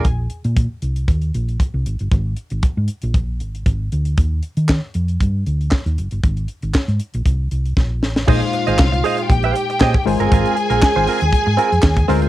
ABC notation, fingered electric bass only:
X:1
M:4/4
L:1/16
Q:1/4=117
K:Bbmix
V:1 name="Fingered electric bass" clef=bass
B,,,2 z B,,2 z C,,2 E,,2 B,,,2 z C,, A,,, G,,, | A,,,2 z A,,, z A,, z B,,, B,,,2 A,,,2 A,,,2 D,,2 | E,,2 z E,2 z F,,2 G,,2 D,,2 z E,, ^F,,, G,,, | A,,,2 z A,,, z A,, z B,,, C,,2 C,,2 B,,,2 =A,,,2 |
B,,, z2 A,,, C,,2 z2 B,,,2 z2 B,, z A,,, G,,, | A,,, z2 B,,, z A,,, z E,, z A,, z F,, E,,2 D,,2 |]